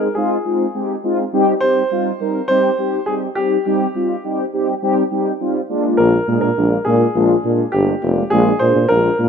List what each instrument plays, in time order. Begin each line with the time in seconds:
Already playing: grand piano A#4
0.15 analog polysynth G#3 C4 D#4 F4, grand piano G#4
0.45 analog polysynth G#3 C4 D#4 F4
0.74 analog polysynth G#3 C4 D#4 G4
1.04 analog polysynth G#3 C4 D#4 F4
1.33 analog polysynth G3 C4 D#4 G4
1.61 analog polysynth G3 C4 D#4 G4, grand piano C5
1.91 analog polysynth G3 C4 D#4 F4
2.20 analog polysynth G3 C4 D#4 A#4
2.48 analog polysynth G3 C4 D#4 G4, grand piano C5
2.78 analog polysynth G3 C4 D#4 G4
3.06 analog polysynth G3 C4 D#4 G4, grand piano G#4
3.35 analog polysynth G3 C4 D#4 G4, grand piano G4
3.66 analog polysynth G3 C4 D#4 G4
3.95 analog polysynth G3 C4 D#4 F4
4.24 analog polysynth G3 C4 D#4 G4
4.53 analog polysynth G3 C4 D#4 G4
4.82 analog polysynth G3 C4 D#4 G4
5.11 analog polysynth G3 C4 D#4 G4
5.40 analog polysynth G3 C4 D#4 F4
5.69 analog polysynth G#3 A#3 D4 F4
5.97 tuba A#1, grand piano A#4
6.28 tuba A#2, analog polysynth G#3 A#3 D4 G#4
6.41 tuba A#2, grand piano A#4
6.57 tuba A#1, analog polysynth G#3 A#3 D4 F4
6.85 tuba A#2, analog polysynth G#3 A#3 D4 F4, grand piano G#4
7.15 tuba A#1, analog polysynth G#3 A#3 D4 F4
7.44 tuba A#2, analog polysynth G#3 A#3 D4 F4
7.72 tuba G1, analog polysynth G#3 A#3 D4 F4, grand piano G4
8.02 tuba F1, analog polysynth G#3 A#3 D4 F4
8.30 tuba A#1, analog polysynth G#3 A#3 D4 F4, grand piano G#4
8.59 tuba A#2, analog polysynth G#3 A#3 D4 G#4, grand piano C5
8.75 tuba A#2
8.88 tuba A#1, analog polysynth G#3 A#3 D4 F4, grand piano A#4
9.19 tuba A#2, analog polysynth G#3 A#3 D4 F4